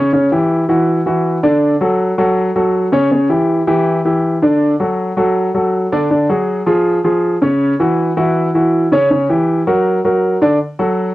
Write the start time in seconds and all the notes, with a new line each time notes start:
0.13 C#3 C#4 C#5
0.32 E3 E4 G4
0.69 E3 E4 F#4
1.06 E3 E4 F#4
1.43 D3 D4 D5
1.81 F#3 F#4 A4
2.18 F#3 F#4 A4
2.56 F#3 F#4 A4
2.92 C#3 C#4 C#5
3.11 C#3 C#4
3.29 E3 E4 G4
3.67 E3 E4 G4
4.05 E3 E4 G4
4.42 D3 D4 D5
4.80 F#3 F#4 A4
5.17 F#3 F#4 A4
5.54 F#3 F#4 A4
5.92 D3 D4 D5
6.11 D3 D4 D5
6.29 F#3 F#4 G#4
6.66 F3 F4 G#4
7.04 F3 F4 G#4
7.42 C#3 C#4 C#5
7.80 E3 E4 F#4
8.17 E3 E4 F#4
8.54 E3 E4 F#4
8.92 C#3 C#4 C#5
9.11 C#3 C#4 C#5
9.29 E3 E4 G4
9.67 F#3 F#4 A#4
10.04 F#3 F#4 A#4
10.41 D3 D4 D5
10.79 F#3 F#4 A4